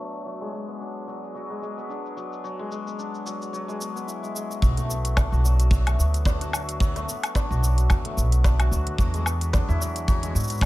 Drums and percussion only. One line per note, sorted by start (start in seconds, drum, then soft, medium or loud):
0.00 shaker medium
0.15 shaker soft
0.27 shaker soft
0.42 shaker soft
0.54 shaker medium
0.70 shaker soft
0.82 shaker soft
0.97 shaker soft
1.09 shaker medium
1.24 shaker soft
1.36 shaker soft
1.63 shaker medium
1.78 shaker soft
1.91 shaker soft
2.06 shaker soft
2.17 shaker medium
2.33 shaker soft
2.45 shaker soft
2.72 shaker medium
2.87 shaker soft
2.99 shaker soft
3.15 shaker soft
3.27 shaker medium
3.42 shaker soft
3.54 shaker soft
3.69 shaker soft
3.81 shaker medium
3.97 shaker soft
4.09 shaker soft
4.24 shaker soft
4.36 shaker medium
4.51 shaker soft
4.62 kick loud
4.62 shaker soft
4.77 closed hi-hat soft
4.77 shaker soft
4.90 shaker medium
5.05 closed hi-hat medium
5.05 shaker soft
5.17 kick loud
5.17 snare loud
5.17 low woodblock medium
5.17 shaker soft
5.33 shaker soft
5.45 shaker medium
5.60 closed hi-hat medium
5.60 shaker soft
5.71 kick loud
5.71 shaker soft
5.87 closed hi-hat soft
5.87 low woodblock medium
5.87 shaker soft
6.00 shaker medium
6.14 closed hi-hat medium
6.14 shaker soft
6.25 kick loud
6.25 snare loud
6.25 shaker soft
6.41 closed hi-hat soft
6.41 shaker soft
6.53 low woodblock medium
6.53 shaker medium
6.69 closed hi-hat medium
6.69 shaker soft
6.80 kick loud
6.80 shaker soft
6.96 snare soft
6.96 closed hi-hat soft
6.96 shaker soft
7.09 shaker medium
7.23 closed hi-hat medium
7.23 low woodblock medium
7.23 shaker soft
7.35 kick medium
7.35 snare loud
7.35 shaker soft
7.52 shaker soft
7.64 shaker medium
7.78 closed hi-hat medium
7.78 shaker soft
7.90 kick loud
7.90 low woodblock medium
7.90 shaker soft
8.05 closed hi-hat soft
8.18 shaker medium
8.32 closed hi-hat medium
8.32 shaker soft
8.44 kick loud
8.44 snare loud
8.44 shaker soft
8.60 closed hi-hat soft
8.60 low woodblock medium
8.60 shaker soft
8.72 shaker medium
8.87 closed hi-hat medium
8.98 kick loud
8.98 shaker soft
9.14 closed hi-hat soft
9.14 shaker soft
9.26 low woodblock medium
9.26 shaker medium
9.41 closed hi-hat medium
9.41 shaker soft
9.53 kick loud
9.53 snare loud
9.53 shaker soft
9.70 shaker soft
9.82 shaker medium
9.96 closed hi-hat medium
9.96 shaker soft
10.08 kick loud
10.08 shaker soft
10.23 closed hi-hat soft
10.23 shaker soft
10.36 shaker medium
10.40 shaker medium
10.43 shaker medium
10.47 closed hi-hat medium
10.47 shaker soft
10.51 shaker soft
10.54 shaker soft
10.57 shaker soft
10.60 kick loud
10.60 snare loud
10.60 low woodblock medium
10.60 shaker soft